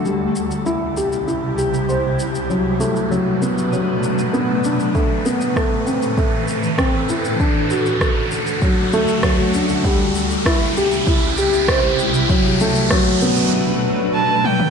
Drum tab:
SH |x-xxx-xxx-xxx-xx|x-xxx-xxx-xxx-xx|x-xxx-xxx-xxx-xx|x-xxx-xxx-xxx-xx|
SD |----------------|----------------|----r-------r---|----r-------r---|
T1 |----------------|----------------|----------------|----------------|
T2 |----------------|----------------|----------------|----------------|
BD |----------------|----------------|o---o---o---o---|o---o---o---o---|

SH |x-xxx-xxx-xxx-xx|x-xxx-xx--------|
SD |----r-------r---|----r-----------|
T1 |----------------|--------------o-|
T2 |----------------|---------------o|
BD |o---o---o---o---|o---o-----------|